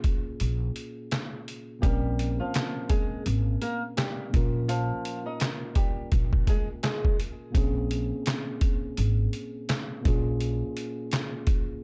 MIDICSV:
0, 0, Header, 1, 5, 480
1, 0, Start_track
1, 0, Tempo, 714286
1, 1230, Time_signature, 4, 2, 24, 8
1, 7954, End_track
2, 0, Start_track
2, 0, Title_t, "Nylon-string guitar"
2, 0, Program_c, 0, 24
2, 1222, Note_on_c, 0, 67, 105
2, 1228, Note_on_c, 0, 55, 84
2, 1586, Note_off_c, 0, 67, 0
2, 1589, Note_off_c, 0, 55, 0
2, 1610, Note_on_c, 0, 65, 69
2, 1616, Note_on_c, 0, 53, 59
2, 1928, Note_off_c, 0, 65, 0
2, 1931, Note_off_c, 0, 53, 0
2, 1945, Note_on_c, 0, 68, 86
2, 1950, Note_on_c, 0, 56, 60
2, 2163, Note_off_c, 0, 68, 0
2, 2166, Note_off_c, 0, 56, 0
2, 2430, Note_on_c, 0, 70, 80
2, 2435, Note_on_c, 0, 58, 65
2, 2559, Note_off_c, 0, 70, 0
2, 2562, Note_off_c, 0, 58, 0
2, 2667, Note_on_c, 0, 67, 78
2, 2672, Note_on_c, 0, 55, 56
2, 2884, Note_off_c, 0, 67, 0
2, 2887, Note_off_c, 0, 55, 0
2, 3148, Note_on_c, 0, 65, 102
2, 3153, Note_on_c, 0, 53, 87
2, 3509, Note_off_c, 0, 65, 0
2, 3512, Note_off_c, 0, 53, 0
2, 3533, Note_on_c, 0, 63, 74
2, 3538, Note_on_c, 0, 75, 55
2, 3849, Note_off_c, 0, 63, 0
2, 3852, Note_off_c, 0, 75, 0
2, 3869, Note_on_c, 0, 67, 83
2, 3875, Note_on_c, 0, 55, 60
2, 4085, Note_off_c, 0, 67, 0
2, 4089, Note_off_c, 0, 55, 0
2, 4359, Note_on_c, 0, 68, 89
2, 4364, Note_on_c, 0, 56, 67
2, 4484, Note_off_c, 0, 68, 0
2, 4487, Note_off_c, 0, 56, 0
2, 4590, Note_on_c, 0, 68, 82
2, 4596, Note_on_c, 0, 56, 64
2, 4806, Note_off_c, 0, 68, 0
2, 4809, Note_off_c, 0, 56, 0
2, 7954, End_track
3, 0, Start_track
3, 0, Title_t, "Tine electric piano"
3, 0, Program_c, 1, 4
3, 0, Control_c, 1, 64, 127
3, 0, Note_on_c, 1, 46, 63
3, 0, Note_on_c, 1, 58, 55
3, 0, Note_on_c, 1, 61, 60
3, 0, Note_on_c, 1, 65, 60
3, 0, Note_on_c, 1, 68, 67
3, 951, Note_off_c, 1, 46, 0
3, 957, Note_off_c, 1, 58, 0
3, 963, Note_off_c, 1, 61, 0
3, 968, Note_off_c, 1, 65, 0
3, 974, Note_off_c, 1, 68, 0
3, 1203, Note_on_c, 1, 46, 63
3, 1214, Note_on_c, 1, 58, 62
3, 1226, Note_on_c, 1, 60, 66
3, 1238, Control_c, 1, 64, 0
3, 1238, Note_on_c, 1, 61, 62
3, 1249, Note_on_c, 1, 70, 74
3, 1366, Control_c, 1, 64, 127
3, 2870, Note_off_c, 1, 46, 0
3, 2875, Note_off_c, 1, 58, 0
3, 2881, Note_off_c, 1, 60, 0
3, 2885, Note_on_c, 1, 46, 66
3, 2887, Note_off_c, 1, 61, 0
3, 2892, Note_off_c, 1, 70, 0
3, 2897, Note_on_c, 1, 58, 57
3, 2909, Note_on_c, 1, 61, 58
3, 2919, Control_c, 1, 64, 0
3, 2920, Note_on_c, 1, 65, 67
3, 2931, Note_on_c, 1, 70, 69
3, 3023, Control_c, 1, 64, 127
3, 4791, Note_off_c, 1, 46, 0
3, 4797, Note_off_c, 1, 58, 0
3, 4802, Note_off_c, 1, 61, 0
3, 4808, Note_off_c, 1, 65, 0
3, 4813, Note_off_c, 1, 70, 0
3, 5043, Note_on_c, 1, 46, 65
3, 5054, Note_on_c, 1, 58, 65
3, 5066, Note_on_c, 1, 60, 66
3, 5077, Note_on_c, 1, 61, 64
3, 5078, Control_c, 1, 64, 0
3, 5088, Note_on_c, 1, 68, 74
3, 5181, Control_c, 1, 64, 127
3, 6709, Note_off_c, 1, 46, 0
3, 6715, Note_off_c, 1, 58, 0
3, 6721, Note_off_c, 1, 60, 0
3, 6726, Note_on_c, 1, 46, 68
3, 6727, Note_off_c, 1, 61, 0
3, 6732, Note_off_c, 1, 68, 0
3, 6737, Note_on_c, 1, 58, 58
3, 6749, Note_on_c, 1, 61, 59
3, 6759, Control_c, 1, 64, 0
3, 6761, Note_on_c, 1, 65, 63
3, 6772, Note_on_c, 1, 68, 70
3, 6861, Control_c, 1, 64, 127
3, 7954, Note_off_c, 1, 46, 0
3, 7954, Note_off_c, 1, 58, 0
3, 7954, Note_off_c, 1, 61, 0
3, 7954, Note_off_c, 1, 65, 0
3, 7954, Note_off_c, 1, 68, 0
3, 7954, End_track
4, 0, Start_track
4, 0, Title_t, "Upright bass"
4, 0, Program_c, 2, 32
4, 273, Note_on_c, 2, 34, 100
4, 460, Note_off_c, 2, 34, 0
4, 1232, Note_on_c, 2, 34, 100
4, 1607, Note_off_c, 2, 34, 0
4, 2193, Note_on_c, 2, 32, 101
4, 2379, Note_off_c, 2, 32, 0
4, 2918, Note_on_c, 2, 34, 108
4, 3290, Note_off_c, 2, 34, 0
4, 4115, Note_on_c, 2, 34, 99
4, 4301, Note_off_c, 2, 34, 0
4, 5074, Note_on_c, 2, 34, 99
4, 5447, Note_off_c, 2, 34, 0
4, 6034, Note_on_c, 2, 32, 101
4, 6220, Note_off_c, 2, 32, 0
4, 6759, Note_on_c, 2, 34, 105
4, 7130, Note_off_c, 2, 34, 0
4, 7954, End_track
5, 0, Start_track
5, 0, Title_t, "Drums"
5, 26, Note_on_c, 9, 42, 77
5, 29, Note_on_c, 9, 36, 93
5, 93, Note_off_c, 9, 42, 0
5, 96, Note_off_c, 9, 36, 0
5, 269, Note_on_c, 9, 42, 93
5, 336, Note_off_c, 9, 42, 0
5, 509, Note_on_c, 9, 42, 78
5, 576, Note_off_c, 9, 42, 0
5, 749, Note_on_c, 9, 42, 86
5, 755, Note_on_c, 9, 38, 101
5, 757, Note_on_c, 9, 39, 82
5, 816, Note_off_c, 9, 42, 0
5, 822, Note_off_c, 9, 38, 0
5, 824, Note_off_c, 9, 39, 0
5, 994, Note_on_c, 9, 42, 77
5, 1062, Note_off_c, 9, 42, 0
5, 1230, Note_on_c, 9, 36, 111
5, 1232, Note_on_c, 9, 42, 101
5, 1297, Note_off_c, 9, 36, 0
5, 1299, Note_off_c, 9, 42, 0
5, 1474, Note_on_c, 9, 42, 83
5, 1541, Note_off_c, 9, 42, 0
5, 1708, Note_on_c, 9, 42, 95
5, 1720, Note_on_c, 9, 38, 119
5, 1721, Note_on_c, 9, 39, 95
5, 1776, Note_off_c, 9, 42, 0
5, 1787, Note_off_c, 9, 38, 0
5, 1788, Note_off_c, 9, 39, 0
5, 1946, Note_on_c, 9, 42, 83
5, 1949, Note_on_c, 9, 36, 96
5, 2013, Note_off_c, 9, 42, 0
5, 2016, Note_off_c, 9, 36, 0
5, 2190, Note_on_c, 9, 42, 92
5, 2257, Note_off_c, 9, 42, 0
5, 2430, Note_on_c, 9, 42, 84
5, 2497, Note_off_c, 9, 42, 0
5, 2670, Note_on_c, 9, 42, 88
5, 2676, Note_on_c, 9, 38, 107
5, 2678, Note_on_c, 9, 39, 85
5, 2737, Note_off_c, 9, 42, 0
5, 2743, Note_off_c, 9, 38, 0
5, 2745, Note_off_c, 9, 39, 0
5, 2915, Note_on_c, 9, 42, 82
5, 2916, Note_on_c, 9, 36, 103
5, 2982, Note_off_c, 9, 42, 0
5, 2983, Note_off_c, 9, 36, 0
5, 3152, Note_on_c, 9, 42, 102
5, 3219, Note_off_c, 9, 42, 0
5, 3395, Note_on_c, 9, 42, 81
5, 3462, Note_off_c, 9, 42, 0
5, 3629, Note_on_c, 9, 42, 95
5, 3640, Note_on_c, 9, 38, 123
5, 3642, Note_on_c, 9, 39, 96
5, 3696, Note_off_c, 9, 42, 0
5, 3707, Note_off_c, 9, 38, 0
5, 3709, Note_off_c, 9, 39, 0
5, 3866, Note_on_c, 9, 42, 82
5, 3869, Note_on_c, 9, 36, 96
5, 3934, Note_off_c, 9, 42, 0
5, 3937, Note_off_c, 9, 36, 0
5, 4110, Note_on_c, 9, 42, 92
5, 4113, Note_on_c, 9, 36, 104
5, 4177, Note_off_c, 9, 42, 0
5, 4180, Note_off_c, 9, 36, 0
5, 4252, Note_on_c, 9, 36, 93
5, 4319, Note_off_c, 9, 36, 0
5, 4350, Note_on_c, 9, 36, 95
5, 4350, Note_on_c, 9, 42, 88
5, 4417, Note_off_c, 9, 42, 0
5, 4418, Note_off_c, 9, 36, 0
5, 4590, Note_on_c, 9, 42, 85
5, 4596, Note_on_c, 9, 38, 106
5, 4598, Note_on_c, 9, 39, 82
5, 4657, Note_off_c, 9, 42, 0
5, 4664, Note_off_c, 9, 38, 0
5, 4665, Note_off_c, 9, 39, 0
5, 4736, Note_on_c, 9, 36, 101
5, 4803, Note_off_c, 9, 36, 0
5, 4836, Note_on_c, 9, 42, 80
5, 4903, Note_off_c, 9, 42, 0
5, 5071, Note_on_c, 9, 36, 113
5, 5073, Note_on_c, 9, 42, 101
5, 5139, Note_off_c, 9, 36, 0
5, 5140, Note_off_c, 9, 42, 0
5, 5314, Note_on_c, 9, 42, 79
5, 5382, Note_off_c, 9, 42, 0
5, 5549, Note_on_c, 9, 42, 97
5, 5561, Note_on_c, 9, 38, 119
5, 5562, Note_on_c, 9, 39, 95
5, 5617, Note_off_c, 9, 42, 0
5, 5628, Note_off_c, 9, 38, 0
5, 5630, Note_off_c, 9, 39, 0
5, 5787, Note_on_c, 9, 42, 82
5, 5790, Note_on_c, 9, 36, 95
5, 5854, Note_off_c, 9, 42, 0
5, 5857, Note_off_c, 9, 36, 0
5, 6031, Note_on_c, 9, 42, 98
5, 6098, Note_off_c, 9, 42, 0
5, 6270, Note_on_c, 9, 42, 86
5, 6338, Note_off_c, 9, 42, 0
5, 6511, Note_on_c, 9, 42, 90
5, 6517, Note_on_c, 9, 38, 109
5, 6519, Note_on_c, 9, 39, 83
5, 6578, Note_off_c, 9, 42, 0
5, 6584, Note_off_c, 9, 38, 0
5, 6586, Note_off_c, 9, 39, 0
5, 6755, Note_on_c, 9, 42, 82
5, 6757, Note_on_c, 9, 36, 105
5, 6823, Note_off_c, 9, 42, 0
5, 6824, Note_off_c, 9, 36, 0
5, 6992, Note_on_c, 9, 42, 102
5, 7060, Note_off_c, 9, 42, 0
5, 7235, Note_on_c, 9, 42, 79
5, 7302, Note_off_c, 9, 42, 0
5, 7469, Note_on_c, 9, 42, 93
5, 7480, Note_on_c, 9, 38, 117
5, 7482, Note_on_c, 9, 39, 94
5, 7536, Note_off_c, 9, 42, 0
5, 7548, Note_off_c, 9, 38, 0
5, 7549, Note_off_c, 9, 39, 0
5, 7706, Note_on_c, 9, 42, 83
5, 7709, Note_on_c, 9, 36, 97
5, 7773, Note_off_c, 9, 42, 0
5, 7776, Note_off_c, 9, 36, 0
5, 7954, End_track
0, 0, End_of_file